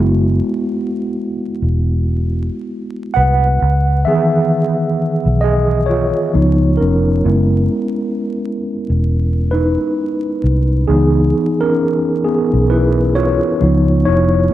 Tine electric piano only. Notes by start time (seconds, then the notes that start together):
Already playing: G#3 B3 E4 F#4
3.14 B4 F#5
4.05 D#3 E3 B3 G#4 E5
5.41 G#4 D#5
5.86 F4 C#5
6.33 F3 B3 D#4
6.77 C#4 A#4
7.24 G#3 B3 E4
9.51 D#4 B4
10.88 E3 B3 D#4 G#4
11.61 C#4 A#4
12.24 B3 G#4
12.70 E4 B4
13.15 F4 C#5
13.60 F3 B3 D#4
14.06 E4 C#5